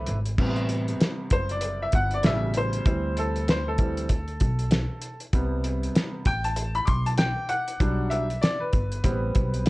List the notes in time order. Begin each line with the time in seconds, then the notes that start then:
Already playing: A3 C4 E4 G4 B4
0.06 G#1, closed hi-hat
0.25 closed hi-hat
0.38 A1 C3 G3 B3, kick, crash
0.56 closed hi-hat
0.69 closed hi-hat
0.88 closed hi-hat
1.00 snare, closed hi-hat
1.30 F#1 C5, kick, closed hi-hat
1.49 D5, closed hi-hat
1.61 closed hi-hat
1.82 E5
1.92 G1 F#5, kick, closed hi-hat
2.11 D5, closed hi-hat
2.23 A1 B2 C#3 G3 E5, snare, closed hi-hat
2.54 C5, closed hi-hat
2.73 closed hi-hat
2.85 D2 E3 G3 C4, kick, closed hi-hat
3.17 A4, closed hi-hat
3.36 closed hi-hat
3.48 C5, snare, closed hi-hat
3.68 A4
3.78 E3 G3 C4, kick, closed hi-hat
3.97 closed hi-hat
4.09 kick, closed hi-hat
4.28 closed hi-hat
4.40 B1, kick, closed hi-hat
4.59 closed hi-hat
4.71 snare, closed hi-hat
5.02 closed hi-hat
5.20 closed hi-hat
5.33 C2 C3 G3 B3, kick, closed hi-hat
5.64 closed hi-hat
5.83 closed hi-hat
5.95 snare, closed hi-hat
6.25 A1 G5, kick, closed hi-hat
6.44 A5, closed hi-hat
6.56 closed hi-hat
6.75 B5, closed hi-hat
6.85 B1 C6 D6, kick, closed hi-hat
7.06 A5, closed hi-hat
7.18 G5, snare, closed hi-hat
7.49 F#5, closed hi-hat
7.68 closed hi-hat
7.80 B1 F#3 G3 D4, kick, closed hi-hat
8.10 E5, closed hi-hat
8.30 closed hi-hat
8.41 D5, snare, closed hi-hat
8.60 B4
8.73 G1, kick, closed hi-hat
8.92 closed hi-hat
9.04 A1 G3 B3 C4, kick, closed hi-hat
9.35 B1, kick, closed hi-hat
9.54 closed hi-hat
9.66 closed hi-hat